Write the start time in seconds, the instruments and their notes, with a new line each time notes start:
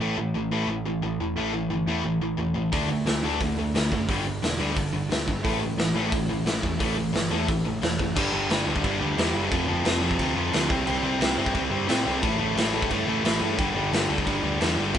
0.00 picked electric bass A1, distorted electric guitar A2 E3 A3
0.17 picked electric bass A2, distorted electric guitar A2 E3
0.34 picked electric bass A1, distorted electric guitar A2 E3
0.51 picked electric bass A1, distorted electric guitar A2 E3 A3
0.68 picked electric bass A1, distorted electric guitar A2 E3
0.86 distorted electric guitar A2 E3
1.02 picked electric bass A1, distorted electric guitar A2 E3
1.19 picked electric bass E1, distorted electric guitar A2 E3
1.36 picked electric bass A1, distorted electric guitar A2 E3 A3
1.53 distorted electric guitar A2 E3
1.69 picked electric bass G1, distorted electric guitar A2 E3
1.86 picked electric bass E2, distorted electric guitar A2 E3 A3
2.04 picked electric bass A1, distorted electric guitar A2 E3
2.20 picked electric bass A1, distorted electric guitar A2 E3
2.37 picked electric bass E1, distorted electric guitar A2 E3
2.54 picked electric bass A1, distorted electric guitar A2 E3
2.72 picked electric bass D2, distorted electric guitar D3 A3 D4, kick, open hi-hat
2.88 picked electric bass D3, distorted electric guitar D3 A3
3.06 picked electric bass D2, distorted electric guitar D3 A3, snare, open hi-hat
3.23 picked electric bass D2, distorted electric guitar D3 A3 D4
3.41 picked electric bass D2, distorted electric guitar D3 A3, kick, open hi-hat
3.59 distorted electric guitar D3 A3
3.74 picked electric bass D2, distorted electric guitar D3 A3, snare, open hi-hat
3.91 picked electric bass F#1, distorted electric guitar D3 A3, kick
4.09 picked electric bass G1, distorted electric guitar G2 D3 G3, kick, open hi-hat
4.26 distorted electric guitar G2 D3
4.42 picked electric bass E1, distorted electric guitar G2 D3, snare, open hi-hat
4.59 picked electric bass D2, distorted electric guitar G2 D3 G3
4.76 picked electric bass G1, distorted electric guitar G2 D3, kick, open hi-hat
4.93 picked electric bass G1, distorted electric guitar G2 D3
5.10 picked electric bass D2, distorted electric guitar G2 D3, snare, open hi-hat
5.27 picked electric bass G1, distorted electric guitar G2 D3, kick
5.44 picked electric bass A1, distorted electric guitar A2 E3 A3, kick, open hi-hat
5.60 picked electric bass A2, distorted electric guitar A2 E3
5.78 picked electric bass A1, distorted electric guitar A2 E3, snare, open hi-hat
5.95 picked electric bass A1, distorted electric guitar A2 E3 A3
6.12 picked electric bass A1, distorted electric guitar A2 E3, kick, open hi-hat
6.29 distorted electric guitar A2 E3
6.45 picked electric bass A1, distorted electric guitar A2 E3, snare, open hi-hat
6.62 picked electric bass E1, distorted electric guitar A2 E3, kick
6.79 picked electric bass A1, distorted electric guitar A2 E3 A3, kick, open hi-hat
6.96 distorted electric guitar A2 E3
7.13 picked electric bass G1, distorted electric guitar A2 E3, snare, open hi-hat
7.30 picked electric bass E2, distorted electric guitar A2 E3 A3
7.48 picked electric bass A1, distorted electric guitar A2 E3, kick, open hi-hat
7.65 picked electric bass A1, distorted electric guitar A2 E3
7.82 picked electric bass E1, distorted electric guitar A2 E3, snare, open hi-hat
7.99 picked electric bass F#1, distorted electric guitar A2 E3, kick
8.15 picked electric bass G1, distorted electric guitar G2 D3 G3, kick, crash
8.32 picked electric bass G1, distorted electric guitar G2 D3 G3
8.49 picked electric bass G1, distorted electric guitar G2 D3 G3, snare, crash
8.67 picked electric bass D2, distorted electric guitar G2 D3 G3
8.76 kick
8.84 picked electric bass G1, distorted electric guitar G2 D3 G3, kick, crash
9.00 picked electric bass D2, distorted electric guitar G2 D3 G3
9.18 picked electric bass E2, distorted electric guitar G2 D3 G3, snare, crash
9.35 picked electric bass F#1, distorted electric guitar G2 D3 G3
9.51 picked electric bass F1, distorted electric guitar F2 C3 F3, kick, crash
9.68 picked electric bass F1, distorted electric guitar F2 C3 F3
9.85 picked electric bass F1, distorted electric guitar F2 C3 F3, snare, crash
10.02 distorted electric guitar F2 C3 F3
10.11 kick
10.19 picked electric bass D2, distorted electric guitar F2 C3 F3, kick, crash
10.36 picked electric bass F2, distorted electric guitar F2 C3 F3
10.53 picked electric bass D2, distorted electric guitar F2 C3 F3, snare, crash
10.70 picked electric bass C2, distorted electric guitar C3 G3 C4, kick
10.87 picked electric bass C2, distorted electric guitar C3 G3 C4, crash
11.02 picked electric bass C2, distorted electric guitar C3 G3 C4
11.21 picked electric bass C2, distorted electric guitar C3 G3 C4, snare, crash
11.38 picked electric bass G2, distorted electric guitar C3 G3 C4
11.46 kick
11.55 picked electric bass C2, distorted electric guitar C3 G3 C4, kick, crash
11.70 picked electric bass G2, distorted electric guitar C3 G3 C4
11.88 picked electric bass A2, distorted electric guitar C3 G3 C4, snare, crash
12.04 picked electric bass C2, distorted electric guitar C3 G3 C4
12.21 picked electric bass A1, distorted electric guitar A2 E3 A3, kick, crash
12.38 picked electric bass A1, distorted electric guitar A2 E3 A3
12.56 picked electric bass A1, distorted electric guitar A2 E3 A3, snare, crash
12.73 distorted electric guitar A2 E3 A3
12.82 kick
12.90 picked electric bass G2, distorted electric guitar A2 E3 A3, kick, crash
13.07 picked electric bass A2, distorted electric guitar A2 E3 A3
13.23 picked electric bass A1, distorted electric guitar A2 E3 A3, snare, crash
13.41 picked electric bass G2, distorted electric guitar A2 E3 A3
13.58 picked electric bass G1, distorted electric guitar G2 D3 G3, kick, crash
13.75 picked electric bass G1, distorted electric guitar G2 D3 G3
13.92 picked electric bass G1, distorted electric guitar G2 D3 G3, snare, crash
14.09 picked electric bass D2, distorted electric guitar G2 D3 G3
14.18 kick
14.26 picked electric bass G1, distorted electric guitar G2 D3 G3, kick, crash
14.43 picked electric bass D2, distorted electric guitar G2 D3 G3
14.60 picked electric bass E2, distorted electric guitar G2 D3 G3, snare, crash
14.77 picked electric bass G1, distorted electric guitar G2 D3 G3
14.94 picked electric bass F1, distorted electric guitar F2 C3, kick, crash